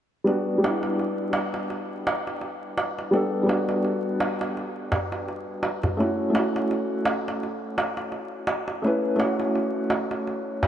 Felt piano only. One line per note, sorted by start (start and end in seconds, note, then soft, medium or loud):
0.24 0.57 G3 medium
0.24 0.58 B3 medium
0.24 0.59 D4 medium
0.29 0.60 F#4 medium
0.58 3.07 G3 medium
0.58 3.08 B3 medium
0.64 3.10 D4 medium
0.64 3.11 E4 medium
3.11 3.42 G3 medium
3.11 3.44 B3 medium
3.11 3.45 D4 medium
3.11 3.46 A4 medium
3.43 5.92 G3 medium
3.43 5.94 B3 medium
3.49 5.95 D4 medium
3.49 5.96 F#4 medium
5.97 6.28 A3 medium
5.97 6.31 C#4 medium
5.97 6.31 E4 medium
6.02 6.32 F#4 medium
6.30 8.78 A3 medium
6.30 8.80 C#4 medium
6.36 8.81 E4 medium
6.36 8.83 F#4 medium
8.82 9.14 A3 medium
8.82 9.16 C#4 medium
8.82 9.17 E4 medium
8.87 9.17 B4 medium
9.16 10.68 A3 medium
9.16 10.68 C#4 medium
9.22 10.68 E4 medium
9.22 10.68 F#4 medium